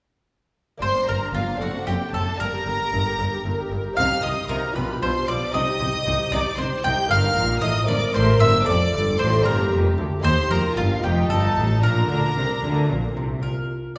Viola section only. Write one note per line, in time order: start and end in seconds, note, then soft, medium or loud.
0.82 0.94 A#3 medium
0.96 1.09 D4 medium
1.08 1.21 A#3 medium
1.22 1.35 D4 medium
1.35 1.47 A#3 medium
1.48 1.61 D4 medium
1.61 1.73 C4 medium
1.75 1.88 D4 medium
1.88 2.01 C4 medium
2.01 2.14 D4 medium
2.14 2.26 C4 medium
2.28 2.40 D4 medium
2.40 2.53 A#4 medium
2.54 2.67 G4 medium
2.67 2.80 A#4 medium
2.80 2.93 G4 medium
2.93 3.05 A#4 medium
3.07 3.20 G4 medium
3.20 3.33 A#4 medium
3.33 3.46 G4 medium
3.46 3.58 A#4 medium
3.59 3.72 G4 medium
3.73 3.85 A#4 medium
3.85 3.98 G4 medium
3.98 4.10 D#4 medium
4.12 4.24 G4 medium
4.25 4.37 D#4 medium
4.38 4.50 G4 medium
4.51 4.63 D#4 medium
4.64 4.77 G4 medium
4.77 4.89 F4 medium
4.90 5.03 G4 medium
5.04 5.16 F4 medium
5.16 5.29 G4 medium
5.30 5.41 F4 medium
5.42 5.55 G4 medium
5.55 5.67 D#4 medium
5.68 5.81 G4 medium
5.81 5.94 D#4 medium
5.94 6.07 G4 medium
6.06 6.18 D#4 medium
6.20 6.32 G4 medium
6.32 6.45 D#4 medium
6.45 6.58 G4 medium
6.58 6.70 D#4 medium
6.71 6.84 G4 medium
6.84 6.97 D#4 medium
6.97 7.10 G4 medium
7.10 7.84 A#4 medium
7.88 8.65 A#4 loud
8.67 9.45 A4 medium
9.45 10.22 G4 medium
10.23 10.62 G4 medium
10.63 11.03 F4 medium
11.03 11.82 D#4 loud
11.83 13.23 D4 medium